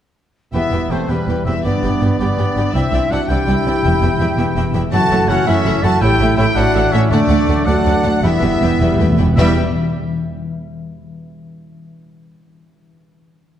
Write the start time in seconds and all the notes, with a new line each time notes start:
0.53 E1 E2 G3 B3 E4 G4 B4 E5 G5
0.64 B2
0.71 E1 E2 B3 G4 B4 G5
0.82 G4
0.90 E1 E2 A3 B3 C4 G4 B4 C5 G5
1.00 G4
1.08 E1 E2 G3 B3 G4 B4 G5
1.19 B5
1.27 E1 E2 B3 G4 B4 G5
1.38 B5
1.45 E1 E2 B3 C4 E4 G4 B4 E5 G5
1.64 G1 G2 B3 D4 G4 B4 D5 G5
1.74 D3
1.83 G1 G2 B3 G4 B4 G5
2.00 G1 G2 B3 G4 B4 G5
2.11 G4
2.19 G1 G2 B3 D4 G4 B4 D5 G5
2.38 G1 G2 B3 G4 B4 G5
2.47 B5
2.56 G1 G2 B3 G4 B4 G5
2.66 B5
2.74 C2 C3 E3 C4 D4 E4 D5 E5 G5
2.84 G3
2.93 C2 C4 E4 D5 G5
3.02 E4
3.11 C2 C4 D4 E4 F#4 D5 F#5 G5
3.21 C5
3.29 C2 C4 E4 G4 D5 E5 G5
3.39 D6
3.47 C2 C4 E4 D5 E5 G5
3.57 D6
3.66 C2 C4 E4 D5 G5
3.75 D6
3.84 E1 E2 B3 E4 E5 G5
3.94 B2
4.01 E1 E2 B3 E4 E5 G5
4.12 E4
4.20 E1 E2 B3 E4 E5 G5
4.30 B4
4.38 E1 E2 B3 E4 E5 G5
4.48 E6
4.56 E1 E2 B3 E4 E5 G5
4.66 E6
4.74 E1 E2 B3 E4 E5 G5
4.84 E6
4.92 F#1 F#2 A3 E4 F#4 A4 C#5 F#5 A5
5.03 C#3
5.10 F#1 F#2 A3 E4 C#5 F#5
5.20 E4
5.28 F#1 F#2 A3 C#4 E4 F#4 C#5 F#5
5.38 A4
5.46 F#1 F#2 A3 C#4 E4 C#5 E5 F#5
5.57 C#6
5.64 F#1 F#2 A3 E4 C#5 E5 F#5
5.75 C#6
5.83 F#1 F#2 A3 E4 F#4 A4 C#5 E5 F#5 A5
6.01 A1 A2 A3 E4 G4 C#5 E5 G5
6.11 E3
6.19 A1 A2 A3 E4 C#5 E5
6.29 E4
6.37 A1 A2 A3 E4 G4 C#5 E5 G5
6.47 A4
6.55 A1 A2 A3 D4 E4 F#4 C#5 E5 F#5
6.66 C#6
6.74 A1 A2 A3 E4 C#5 E5
6.91 A1 A2 A3 C#4 E4 C#5 E5
7.09 D2 D3 F#3 A3 D4 D5 F#5
7.29 D2 A3 D4 D5 F#5
7.47 D2 A3 D4 D5 F#5
7.58 A4
7.65 D2 A3 D4 F#4 D5 F#5
7.85 D2 A3 D4 D5 F#5
7.96 D6
8.03 D2 A3 D4 D5 F#5
8.14 D6
8.22 E1 E2 E3 G3 B3 E4 G4 B4 E5 G5
8.32 E2 G3
8.39 E1 E2 G3 G4 B4 G5
8.47 E2
8.52 E2 B4
8.61 E1 E2 G3 G4 B4 G5
8.70 E2
8.78 E1 E2 G3 B4 G5 B5
8.85 E2
8.94 E2
8.99 E1 E2 A3 B4 G5 B5
9.09 E2 G5
9.17 E1 E2 B3 B4 G5 B5
9.25 E2 G5
9.35 E1 E2 E3 G3 B3 E4 G4 B4 E5 G5